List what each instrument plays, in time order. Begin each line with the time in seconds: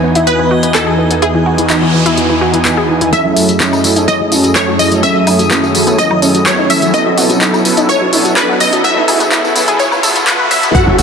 Already playing: analog synth pad E2 E3 D#4 F#4 G#5, supersaw synth E3 B3 D#4 G#5, synth texture D#5
0.03 synth arpeggio sound B3
0.15 synth arpeggio sound E4, closed hi-hat
0.27 synth arpeggio sound B3, synth pluck B4, closed hi-hat
0.39 synth arpeggio sound B3
0.51 synth arpeggio sound F#4
0.63 synth arpeggio sound B3, closed hi-hat
0.75 synth arpeggio sound B3, synth pluck A4, clap, closed hi-hat
0.87 synth arpeggio sound G#4
0.98 synth arpeggio sound B3
1.11 synth arpeggio sound B3, closed hi-hat
1.22 synth arpeggio sound E4, synth pluck G#4, closed hi-hat, noise sweep
1.34 synth arpeggio sound E3
1.46 synth arpeggio sound F#4
1.58 synth arpeggio sound E3, closed hi-hat
1.70 synth arpeggio sound D#4, clap, closed hi-hat
1.82 synth arpeggio sound E3
1.94 synth arpeggio sound E3
2.06 synth arpeggio sound E4, closed hi-hat
2.17 synth arpeggio sound E3, closed hi-hat
2.30 synth arpeggio sound E3
2.41 synth arpeggio sound F#4
2.54 synth arpeggio sound E3, closed hi-hat
2.65 synth arpeggio sound E3, clap, closed hi-hat
2.77 synth arpeggio sound G#4
2.89 synth arpeggio sound E3
3.01 synth arpeggio sound E3, closed hi-hat
3.13 analog synth pad F#2 F#3 A3 E4 G#4, supersaw synth F#3 C#4 E4 A4, synth arpeggio sound E4, synth pluck E5, synth texture D#6, kick, closed hi-hat, tambourine, riser
3.25 synth arpeggio sound F#3
3.36 supersaw synth F#3 C#4 E4 A4, synth arpeggio sound F#4, open hi-hat, tambourine
3.49 synth arpeggio sound F#3, closed hi-hat, tambourine
3.60 supersaw synth F#3 C#4 E4 A4, synth arpeggio sound D#4, kick, clap, closed hi-hat, tambourine
3.73 synth arpeggio sound F#3, tambourine, high woodblock
3.84 supersaw synth F#3 C#4 E4 A4, synth arpeggio sound F#3, open hi-hat, tambourine
3.96 supersaw synth F#3 C#4 E4 A4, synth arpeggio sound D#4, closed hi-hat, tambourine
4.08 synth arpeggio sound F#3, supersaw synth F#3 C#4 E4 C#5, synth pluck D#5, kick, closed hi-hat, tambourine
4.20 synth arpeggio sound F#3
4.32 supersaw synth F#3 C#4 E4 A4, synth arpeggio sound E4, open hi-hat, tambourine
4.44 synth arpeggio sound F#3, closed hi-hat, tambourine
4.56 supersaw synth F#3 C#4 E4 A4, synth arpeggio sound F#3, synth pluck C#5, kick, clap, closed hi-hat, tambourine
4.68 synth arpeggio sound F#4
4.79 synth arpeggio sound F#3, supersaw synth F#3 C#4 E4 A4, synth pluck D#5, open hi-hat, tambourine
4.92 synth arpeggio sound F#3, supersaw synth F#3 C#4 E4 A4, closed hi-hat, tambourine
5.03 analog synth pad D#3, supersaw synth F#3 C#4 E4 A4, synth arpeggio sound C#4, synth pluck E5, kick, closed hi-hat, tambourine
5.16 synth arpeggio sound F#3
5.27 supersaw synth F#3 C#4 E4 A4, synth arpeggio sound D#4, open hi-hat, tambourine, high woodblock
5.39 synth arpeggio sound F#3, closed hi-hat, tambourine
5.51 supersaw synth F#3 C#4 E4 A4, synth arpeggio sound B3, kick, clap, closed hi-hat, tambourine
5.63 synth arpeggio sound F#3, tambourine
5.75 supersaw synth F#3 C#4 E4 A4, synth arpeggio sound F#3, open hi-hat, tambourine
5.87 supersaw synth F#3 C#4 E4 A4, synth arpeggio sound B3, closed hi-hat, tambourine
5.98 supersaw synth F#3 C#4 E4 C#5, synth arpeggio sound F#3, synth pluck D#5, kick, closed hi-hat, tambourine
6.11 synth arpeggio sound F#3, high woodblock
6.22 supersaw synth F#3 C#4 E4 A4, synth arpeggio sound C#4, open hi-hat, tambourine
6.35 synth arpeggio sound F#3, closed hi-hat, tambourine
6.46 supersaw synth F#3 C#4 E4 A4, synth arpeggio sound F#3, synth pluck C#5, kick, clap, closed hi-hat, tambourine
6.58 synth arpeggio sound D#4
6.70 supersaw synth F#3 C#4 E4 A4, synth arpeggio sound F#3, synth pluck E5, open hi-hat, tambourine
6.82 supersaw synth F#3 C#4 E4 A4, synth arpeggio sound F#3, closed hi-hat, tambourine
6.94 analog synth pad B2 C#4 E4 A4, supersaw synth F#3 B3 E4 A4, synth arpeggio sound E4, synth pluck D#5, kick, closed hi-hat, tambourine
7.06 synth arpeggio sound F#3
7.18 supersaw synth F#3 B3 E4 A4, synth arpeggio sound F#4, open hi-hat, tambourine
7.30 synth arpeggio sound F#3, closed hi-hat, tambourine
7.41 supersaw synth F#3 B3 E4 A4, synth arpeggio sound D#4, kick, clap, closed hi-hat
7.54 synth arpeggio sound F#3, tambourine, high woodblock
7.65 supersaw synth F#3 B3 E4 A4, synth arpeggio sound F#3, open hi-hat, tambourine
7.77 supersaw synth F#3 B3 E4 A4, synth arpeggio sound D#4, closed hi-hat, tambourine
7.89 synth arpeggio sound F#3, supersaw synth F#3 B3 E4 C#5, synth pluck C#5, kick, closed hi-hat, tambourine
8.01 synth arpeggio sound F#3
8.13 supersaw synth F#3 B3 E4 A4, synth arpeggio sound E4, open hi-hat, tambourine
8.25 synth arpeggio sound F#3, closed hi-hat, tambourine
8.37 supersaw synth F#3 B3 E4 A4, synth arpeggio sound F#3, synth pluck B4, kick, clap, closed hi-hat, tambourine
8.49 synth arpeggio sound F#4
8.60 supersaw synth F#3 B3 E4 A4, synth arpeggio sound F#3, synth pluck D#5, open hi-hat, tambourine
8.73 synth arpeggio sound F#3, supersaw synth F#3 B3 E4 A4, closed hi-hat, tambourine
8.84 supersaw synth F#3 B3 E4 A4, synth arpeggio sound F#4, analog synth pad G#4, synth pluck E5, kick, closed hi-hat, tambourine
8.96 synth arpeggio sound B3
9.08 supersaw synth F#3 B3 E4 A4, synth arpeggio sound G#4, open hi-hat, tambourine, high woodblock
9.20 synth arpeggio sound B3, closed hi-hat, tambourine
9.32 supersaw synth F#3 B3 E4 A4, synth arpeggio sound E4, kick, clap, closed hi-hat, tambourine
9.44 synth arpeggio sound B3, tambourine
9.56 supersaw synth F#3 B3 E4 A4, synth arpeggio sound B3, open hi-hat, tambourine
9.68 supersaw synth F#3 B3 E4 A4, synth arpeggio sound G#4, closed hi-hat, tambourine
9.79 supersaw synth F#3 B3 E4 C#5, synth arpeggio sound B3, synth pluck C#5, kick, closed hi-hat, tambourine
9.92 synth arpeggio sound B3, tambourine, high woodblock
10.03 supersaw synth F#3 B3 E4 A4, synth arpeggio sound A4, open hi-hat, tambourine
10.16 synth arpeggio sound B3, closed hi-hat, tambourine
10.27 supersaw synth F#3 B3 E4 A4, synth arpeggio sound B3, synth pluck B4, kick, clap, closed hi-hat, tambourine
10.39 synth arpeggio sound B4
10.51 supersaw synth F#3 B3 E4 A4, synth arpeggio sound B3, synth pluck E5, open hi-hat, tambourine
10.63 supersaw synth F#3 B3 E4 A4, synth arpeggio sound B3, closed hi-hat, tambourine
10.74 analog synth pad F#3 C#4 E4 G#4 A4, supersaw synth F#3 C#4 E4 A4, synth arpeggio sound E4, synth pluck F#5, kick, closed hi-hat, tambourine, sub drop
10.87 analog synth bass F#1, synth arpeggio sound F#3
10.98 analog synth bass F#1, supersaw synth F#3 C#4 E4 A4, synth arpeggio sound F#4, open hi-hat, tambourine